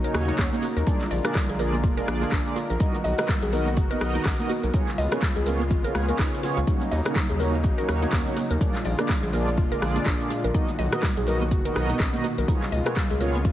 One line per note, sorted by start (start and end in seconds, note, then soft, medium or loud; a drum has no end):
0.00 0.83 C#3 medium
0.00 0.85 F#3 medium
0.00 0.85 D#4 medium
0.00 4.70 A#4 medium
0.04 0.49 A#3 medium
0.04 0.49 C#4 medium
0.04 0.49 D#4 medium
0.04 0.49 F#4 medium
0.04 0.13 A#4 loud
0.04 0.49 C#5 medium
0.04 closed hi-hat soft
0.04 shaker medium
0.14 0.31 D#2 loud
0.14 cross-stick loud
0.14 open hi-hat medium
0.14 shaker medium
0.28 0.38 D#4 medium
0.28 closed hi-hat soft
0.28 muted conga soft
0.28 high conga medium
0.28 shaker medium
0.38 0.48 D#2 medium
0.38 0.46 C#4 medium
0.38 kick loud
0.38 cross-stick medium
0.38 clap medium
0.38 closed hi-hat medium
0.38 shaker loud
0.52 0.65 A#3 medium
0.52 0.65 C#4 medium
0.52 0.65 D#4 medium
0.52 0.65 F#4 medium
0.52 0.65 C#5 loud
0.52 closed hi-hat soft
0.52 high conga loud
0.52 shaker medium
0.63 0.75 F#4 medium
0.63 open hi-hat loud
0.63 muted conga medium
0.63 shaker loud
0.77 0.83 D#2 medium
0.77 0.82 A#4 medium
0.77 closed hi-hat soft
0.77 shaker medium
0.87 2.79 D3 medium
0.87 2.78 G#3 medium
0.87 1.02 A#3 medium
0.87 0.99 D4 medium
0.87 1.02 D4 medium
0.87 2.79 F4 medium
0.87 1.02 F4 medium
0.87 1.02 G#4 medium
0.87 1.02 D5 medium
0.87 kick loud
0.87 closed hi-hat medium
0.87 low conga loud
0.87 shaker loud
1.01 clap soft
1.01 closed hi-hat soft
1.01 muted conga medium
1.01 shaker medium
1.11 1.20 A#1 loud
1.11 1.24 D5 medium
1.11 open hi-hat medium
1.11 shaker medium
1.24 1.37 A#3 medium
1.24 1.37 D4 medium
1.24 1.37 F4 medium
1.24 1.37 G#4 medium
1.24 1.34 A#4 medium
1.24 1.37 D5 loud
1.24 cross-stick loud
1.24 high conga medium
1.24 shaker loud
1.35 kick loud
1.35 cross-stick medium
1.35 clap loud
1.35 closed hi-hat medium
1.35 muted conga soft
1.35 low conga loud
1.35 shaker medium
1.49 1.85 A#1 loud
1.49 1.59 G#4 medium
1.49 closed hi-hat soft
1.49 shaker medium
1.59 1.75 A#3 medium
1.59 1.75 D4 medium
1.59 1.75 F4 medium
1.59 1.75 G#4 medium
1.59 1.73 A#4 medium
1.59 1.75 D5 medium
1.59 open hi-hat loud
1.59 high conga medium
1.59 shaker loud
1.73 muted conga medium
1.73 high conga loud
1.73 shaker medium
1.84 2.01 F1 medium
1.84 1.97 F4 medium
1.84 kick loud
1.84 open hi-hat medium
1.84 shaker medium
1.97 2.43 A#3 medium
1.97 2.43 D4 medium
1.97 2.43 F4 medium
1.97 2.43 G#4 medium
1.97 2.07 A#4 loud
1.97 2.43 D5 medium
1.97 closed hi-hat soft
1.97 shaker medium
2.08 2.25 A#1 loud
2.08 cross-stick loud
2.08 open hi-hat medium
2.08 high conga medium
2.08 shaker medium
2.22 2.31 D4 medium
2.22 closed hi-hat soft
2.22 muted conga soft
2.22 high conga loud
2.22 shaker medium
2.32 2.41 A#1 medium
2.32 2.39 D4 medium
2.32 kick loud
2.32 cross-stick medium
2.32 clap loud
2.32 closed hi-hat medium
2.32 shaker medium
2.46 2.58 A#3 medium
2.46 2.58 D4 medium
2.46 2.58 F4 medium
2.46 2.58 G#4 medium
2.46 2.58 D5 loud
2.46 closed hi-hat soft
2.46 shaker loud
2.56 2.69 F4 medium
2.56 open hi-hat loud
2.56 muted conga soft
2.56 shaker loud
2.70 2.77 A#1 medium
2.70 2.76 A#4 medium
2.70 closed hi-hat soft
2.70 shaker medium
2.80 4.72 D#3 medium
2.80 6.64 B3 medium
2.80 2.96 B3 medium
2.80 2.93 D#4 medium
2.80 2.96 D#4 medium
2.80 2.96 F#4 medium
2.80 4.72 F#4 medium
2.80 2.96 A#4 medium
2.80 2.96 D#5 medium
2.80 kick loud
2.80 closed hi-hat medium
2.80 low conga loud
2.80 shaker medium
2.95 closed hi-hat soft
2.95 muted conga medium
2.95 shaker medium
3.04 3.14 B1 loud
3.04 3.17 D#5 medium
3.04 open hi-hat medium
3.04 shaker medium
3.18 3.31 B3 medium
3.18 3.31 D#4 medium
3.18 3.31 F#4 medium
3.18 3.28 A#4 medium
3.18 3.31 A#4 medium
3.18 3.31 D#5 loud
3.18 cross-stick loud
3.18 high conga medium
3.18 shaker loud
3.28 kick loud
3.28 cross-stick medium
3.28 clap loud
3.28 closed hi-hat medium
3.28 muted conga soft
3.28 low conga loud
3.28 shaker medium
3.42 3.79 B1 loud
3.42 3.52 G#4 medium
3.42 closed hi-hat soft
3.42 shaker medium
3.53 3.68 B3 medium
3.53 3.68 D#4 medium
3.53 3.68 F#4 medium
3.53 3.66 A#4 medium
3.53 3.68 A#4 medium
3.53 3.68 D#5 medium
3.53 open hi-hat medium
3.53 high conga medium
3.53 shaker loud
3.66 muted conga medium
3.66 high conga loud
3.66 shaker medium
3.77 3.94 F#1 medium
3.77 3.90 F#4 medium
3.77 kick loud
3.77 closed hi-hat medium
3.77 shaker medium
3.91 4.36 B3 medium
3.91 4.36 D#4 medium
3.91 4.36 F#4 medium
3.91 4.00 A#4 loud
3.91 4.36 A#4 medium
3.91 4.36 D#5 medium
3.91 closed hi-hat soft
3.91 shaker medium
4.01 4.18 B1 medium
4.01 cross-stick loud
4.01 open hi-hat medium
4.01 shaker medium
4.15 4.25 D#4 medium
4.15 closed hi-hat soft
4.15 muted conga soft
4.15 high conga loud
4.15 shaker medium
4.25 4.35 B1 medium
4.25 4.33 C#4 medium
4.25 kick loud
4.25 cross-stick medium
4.25 clap loud
4.25 closed hi-hat medium
4.25 shaker medium
4.39 4.52 B3 medium
4.39 4.52 D#4 medium
4.39 4.52 F#4 medium
4.39 4.52 A#4 medium
4.39 4.52 D#5 loud
4.39 closed hi-hat soft
4.39 high conga loud
4.39 shaker loud
4.49 4.62 F#4 medium
4.49 open hi-hat medium
4.49 muted conga medium
4.49 shaker loud
4.63 4.70 B1 medium
4.63 4.69 A#4 medium
4.63 closed hi-hat soft
4.63 shaker medium
4.74 8.57 C#3 medium
4.74 6.66 G#3 medium
4.74 4.90 B3 medium
4.74 4.89 C#4 medium
4.74 4.86 D#4 medium
4.74 4.89 F4 medium
4.74 6.66 F4 medium
4.74 4.90 G#4 medium
4.74 4.89 C#5 medium
4.74 kick loud
4.74 closed hi-hat medium
4.74 low conga loud
4.74 shaker medium
4.87 clap soft
4.87 closed hi-hat soft
4.87 muted conga medium
4.87 shaker medium
4.98 5.07 C#2 loud
4.98 5.11 D#5 medium
4.98 open hi-hat medium
4.98 shaker medium
5.12 5.24 B3 medium
5.12 5.24 C#4 medium
5.12 5.24 F4 medium
5.12 5.24 G#4 medium
5.12 5.21 A#4 medium
5.12 5.24 C#5 loud
5.12 cross-stick loud
5.12 high conga medium
5.12 shaker loud
5.22 kick loud
5.22 cross-stick medium
5.22 clap loud
5.22 closed hi-hat medium
5.22 muted conga soft
5.22 low conga loud
5.22 shaker medium
5.36 5.72 C#2 loud
5.36 5.45 G#4 medium
5.36 closed hi-hat soft
5.36 shaker medium
5.46 5.62 B3 medium
5.46 5.62 C#4 medium
5.46 5.62 F4 medium
5.46 5.62 G#4 medium
5.46 5.60 A#4 medium
5.46 5.62 C#5 medium
5.46 open hi-hat medium
5.46 high conga medium
5.46 shaker loud
5.60 muted conga soft
5.60 high conga loud
5.60 shaker medium
5.71 5.88 G#1 loud
5.71 5.84 F4 medium
5.71 kick loud
5.71 open hi-hat medium
5.71 shaker medium
5.84 6.06 B3 medium
5.84 6.06 C#4 medium
5.84 6.06 F4 medium
5.84 6.06 G#4 medium
5.84 5.94 A#4 loud
5.84 6.06 C#5 medium
5.84 closed hi-hat soft
5.84 shaker medium
5.95 6.12 C#2 medium
5.95 cross-stick medium
5.95 open hi-hat medium
5.95 high conga medium
5.95 shaker medium
6.08 6.41 B3 medium
6.08 6.41 C#4 medium
6.08 6.41 F4 medium
6.08 6.41 G#4 medium
6.08 6.18 A#4 medium
6.08 6.41 C#5 medium
6.08 closed hi-hat soft
6.08 muted conga soft
6.08 high conga loud
6.08 shaker medium
6.19 6.28 C#2 medium
6.19 6.27 D#4 medium
6.19 kick loud
6.19 cross-stick medium
6.19 clap loud
6.19 closed hi-hat medium
6.19 shaker loud
6.33 closed hi-hat soft
6.33 shaker loud
6.43 6.59 B3 loud
6.43 6.59 C#4 medium
6.43 6.56 F4 medium
6.43 6.59 F4 medium
6.43 6.59 G#4 medium
6.43 6.59 C#5 loud
6.43 open hi-hat medium
6.43 muted conga medium
6.43 shaker loud
6.57 6.64 C#2 medium
6.57 6.66 F4 medium
6.57 closed hi-hat soft
6.57 shaker medium
6.67 8.59 F#3 medium
6.67 8.59 A#3 medium
6.67 6.83 A#3 medium
6.67 6.83 C#4 medium
6.67 6.80 D#4 medium
6.67 8.59 D#4 medium
6.67 6.83 D#4 medium
6.67 6.83 F#4 medium
6.67 6.83 C#5 medium
6.67 kick loud
6.67 closed hi-hat medium
6.67 low conga medium
6.67 shaker medium
6.80 closed hi-hat soft
6.80 muted conga medium
6.80 shaker medium
6.91 7.01 D#2 loud
6.91 7.04 D#5 medium
6.91 open hi-hat medium
6.91 shaker medium
7.05 7.18 A#3 medium
7.05 7.18 C#4 medium
7.05 7.18 D#4 medium
7.05 7.18 F#4 medium
7.05 7.15 A#4 medium
7.05 7.18 C#5 loud
7.05 cross-stick medium
7.05 high conga medium
7.05 shaker loud
7.15 kick loud
7.15 cross-stick medium
7.15 clap loud
7.15 closed hi-hat medium
7.15 muted conga soft
7.15 low conga loud
7.15 shaker medium
7.29 7.66 D#2 loud
7.29 7.39 G#4 medium
7.29 closed hi-hat soft
7.29 shaker medium
7.39 7.55 A#3 medium
7.39 7.55 C#4 medium
7.39 7.55 D#4 medium
7.39 7.55 F#4 medium
7.39 7.53 A#4 medium
7.39 7.55 C#5 medium
7.39 open hi-hat medium
7.39 high conga medium
7.39 shaker medium
7.54 muted conga soft
7.54 high conga loud
7.54 shaker medium
7.64 7.81 A#1 loud
7.64 7.77 F#4 medium
7.64 kick loud
7.64 closed hi-hat medium
7.64 shaker medium
7.78 8.23 A#3 medium
7.78 8.23 C#4 medium
7.78 8.23 D#4 medium
7.78 8.23 F#4 medium
7.78 7.87 A#4 loud
7.78 8.23 C#5 medium
7.78 closed hi-hat soft
7.78 shaker medium
7.89 8.06 D#2 loud
7.89 cross-stick medium
7.89 open hi-hat medium
7.89 shaker medium
8.02 8.12 D#4 medium
8.02 closed hi-hat soft
8.02 muted conga soft
8.02 high conga loud
8.02 shaker medium
8.12 8.22 D#2 medium
8.12 8.20 C#4 medium
8.12 kick loud
8.12 cross-stick medium
8.12 clap loud
8.12 closed hi-hat medium
8.12 shaker medium
8.26 8.39 A#3 medium
8.26 8.39 C#4 medium
8.26 8.39 D#4 medium
8.26 8.39 F#4 medium
8.26 8.39 C#5 loud
8.26 closed hi-hat soft
8.26 high conga loud
8.26 shaker medium
8.37 8.49 F#4 medium
8.37 open hi-hat medium
8.37 muted conga soft
8.37 shaker medium
8.51 8.57 D#2 medium
8.51 8.56 A#4 medium
8.51 closed hi-hat soft
8.51 shaker soft
8.61 12.44 A#2 medium
8.61 10.53 D3 medium
8.61 10.53 G#3 medium
8.61 8.76 A#3 medium
8.61 8.76 D4 medium
8.61 8.74 D4 medium
8.61 10.53 F4 medium
8.61 8.76 F4 medium
8.61 8.76 G#4 medium
8.61 8.76 D5 medium
8.61 kick loud
8.61 closed hi-hat medium
8.61 low conga loud
8.61 shaker medium
8.75 clap soft
8.75 closed hi-hat soft
8.75 muted conga medium
8.75 shaker soft
8.85 8.94 A#1 loud
8.85 8.98 D5 medium
8.85 open hi-hat medium
8.85 shaker soft
8.99 9.11 A#3 medium
8.99 9.11 D4 medium
8.99 9.11 F4 medium
8.99 9.11 G#4 medium
8.99 9.08 A#4 medium
8.99 9.11 D5 loud
8.99 cross-stick medium
8.99 high conga medium
8.99 shaker medium
9.09 kick loud
9.09 cross-stick medium
9.09 clap loud
9.09 closed hi-hat medium
9.09 muted conga soft
9.09 low conga loud
9.09 shaker medium
9.23 9.59 A#1 medium
9.23 9.32 G#4 medium
9.23 closed hi-hat soft
9.23 shaker soft
9.33 9.49 A#3 medium
9.33 9.49 D4 medium
9.33 9.49 F4 medium
9.33 9.49 G#4 medium
9.33 9.47 A#4 medium
9.33 9.49 D5 medium
9.33 open hi-hat medium
9.33 high conga medium
9.33 shaker medium
9.47 muted conga soft
9.47 high conga loud
9.47 shaker soft
9.57 9.75 F1 medium
9.57 9.71 F4 medium
9.57 kick loud
9.57 open hi-hat soft
9.57 shaker medium
9.72 10.17 A#3 medium
9.72 10.17 D4 medium
9.72 10.17 F4 medium
9.72 10.17 G#4 medium
9.72 9.81 A#4 loud
9.72 10.17 D5 medium
9.72 closed hi-hat soft
9.72 shaker medium
9.82 9.99 A#1 medium
9.82 cross-stick medium
9.82 open hi-hat medium
9.82 high conga medium
9.82 shaker soft
9.96 10.05 D4 medium
9.96 closed hi-hat soft
9.96 muted conga soft
9.96 high conga loud
9.96 shaker medium
10.06 10.15 A#1 medium
10.06 10.14 D4 medium
10.06 kick loud
10.06 cross-stick medium
10.06 clap loud
10.06 closed hi-hat medium
10.06 shaker medium
10.20 10.32 A#3 medium
10.20 10.32 D4 medium
10.20 10.32 F4 medium
10.20 10.32 G#4 medium
10.20 10.32 D5 loud
10.20 closed hi-hat soft
10.20 shaker medium
10.30 10.43 F4 medium
10.30 open hi-hat loud
10.30 muted conga medium
10.30 shaker medium
10.44 10.51 A#1 medium
10.44 10.50 A#4 medium
10.44 closed hi-hat soft
10.44 shaker soft
10.54 13.52 B2 medium
10.54 12.46 D#3 medium
10.54 10.70 B3 medium
10.54 10.67 D#4 medium
10.54 10.70 D#4 medium
10.54 10.70 F#4 medium
10.54 12.46 F#4 medium
10.54 10.70 A#4 medium
10.54 10.70 D#5 medium
10.54 kick loud
10.54 closed hi-hat medium
10.54 low conga medium
10.54 shaker medium
10.69 closed hi-hat soft
10.69 muted conga medium
10.69 shaker medium
10.79 10.88 B1 loud
10.79 10.91 D#5 medium
10.79 open hi-hat medium
10.79 shaker medium
10.92 11.05 B3 medium
10.92 11.05 D#4 medium
10.92 11.05 F#4 medium
10.92 11.05 A#4 medium
10.92 11.02 A#4 medium
10.92 11.05 D#5 loud
10.92 cross-stick loud
10.92 high conga medium
10.92 shaker loud
11.03 kick loud
11.03 cross-stick medium
11.03 clap loud
11.03 closed hi-hat medium
11.03 muted conga soft
11.03 low conga loud
11.03 shaker medium
11.17 11.53 B1 loud
11.17 11.26 G#4 medium
11.17 closed hi-hat soft
11.17 shaker medium
11.27 11.43 B3 medium
11.27 11.43 D#4 medium
11.27 11.43 F#4 medium
11.27 11.43 A#4 medium
11.27 11.41 A#4 medium
11.27 11.43 D#5 medium
11.27 open hi-hat loud
11.27 high conga medium
11.27 shaker medium
11.41 muted conga medium
11.41 high conga loud
11.41 shaker soft
11.51 11.68 F#1 medium
11.51 11.65 F#4 medium
11.51 kick loud
11.51 closed hi-hat medium
11.51 shaker soft
11.65 12.11 B3 medium
11.65 12.11 D#4 medium
11.65 12.11 F#4 medium
11.65 11.75 A#4 loud
11.65 12.11 A#4 medium
11.65 12.11 D#5 medium
11.65 closed hi-hat soft
11.65 shaker medium
11.76 11.93 B1 medium
11.76 cross-stick medium
11.76 open hi-hat loud
11.76 shaker soft
11.89 11.99 D#4 medium
11.89 closed hi-hat soft
11.89 muted conga soft
11.89 high conga medium
11.89 shaker medium
12.00 12.09 B1 medium
12.00 12.07 C#4 medium
12.00 kick loud
12.00 cross-stick medium
12.00 clap loud
12.00 closed hi-hat medium
12.00 shaker medium
12.13 12.26 B3 medium
12.13 12.26 D#4 medium
12.13 12.26 F#4 medium
12.13 12.26 A#4 medium
12.13 12.26 D#5 loud
12.13 closed hi-hat soft
12.13 high conga loud
12.13 shaker medium
12.24 12.37 F#4 medium
12.24 open hi-hat loud
12.24 muted conga medium
12.24 shaker medium
12.38 12.45 B1 medium
12.38 12.44 A#4 medium
12.38 closed hi-hat soft
12.38 shaker soft
12.48 13.52 C#3 medium
12.48 13.52 G#3 medium
12.48 12.64 B3 medium
12.48 12.64 C#4 medium
12.48 12.61 D#4 medium
12.48 13.52 F4 medium
12.48 12.64 F4 medium
12.48 12.64 G#4 medium
12.48 12.64 C#5 medium
12.48 kick loud
12.48 closed hi-hat medium
12.48 low conga loud
12.48 shaker medium
12.62 clap soft
12.62 closed hi-hat soft
12.62 muted conga medium
12.62 shaker medium
12.72 12.81 C#2 loud
12.72 12.85 D#5 medium
12.72 open hi-hat medium
12.72 shaker medium
12.86 12.99 B3 medium
12.86 12.99 C#4 medium
12.86 12.98 F4 medium
12.86 12.98 G#4 medium
12.86 12.95 A#4 medium
12.86 12.99 C#5 loud
12.86 cross-stick loud
12.86 closed hi-hat soft
12.86 high conga medium
12.86 shaker loud
12.96 kick loud
12.96 cross-stick medium
12.96 clap loud
12.96 closed hi-hat medium
12.96 muted conga soft
12.96 low conga loud
12.96 shaker medium
13.10 13.46 C#2 loud
13.10 13.20 G#4 medium
13.10 closed hi-hat soft
13.10 shaker medium
13.21 13.36 B3 medium
13.21 13.36 C#4 medium
13.21 13.36 F4 medium
13.21 13.36 G#4 medium
13.21 13.34 A#4 medium
13.21 13.36 C#5 loud
13.21 open hi-hat medium
13.21 high conga medium
13.21 shaker medium
13.35 closed hi-hat soft
13.35 muted conga medium
13.35 high conga loud
13.35 shaker soft
13.45 13.52 G#1 medium
13.45 13.52 F4 medium
13.45 kick loud
13.45 open hi-hat medium
13.45 shaker soft